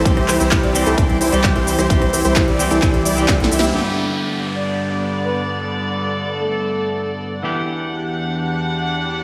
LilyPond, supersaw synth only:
\new Staff \with { instrumentName = "Supersaw synth" } { \time 4/4 \key g \major \tempo 4 = 130 r8 <e' g' c''>16 <e' g' c''>8 <e' g' d''>16 r16 <e' g' a'>16 <e' g' d''>8 <e' g' c''>16 <e' g' d''>16 r16 <e' g' c''>8 <e' g' c''>16 | <e' g' c''>8 <e' g' c''>16 <e' g' c''>8 <e' g' d''>16 r16 <e' g' a'>16 <e' g'>8 <e' g' d''>8 r16 <e' g' a'>16 <e' g' e''>8 | r1 | r1 |
r1 | }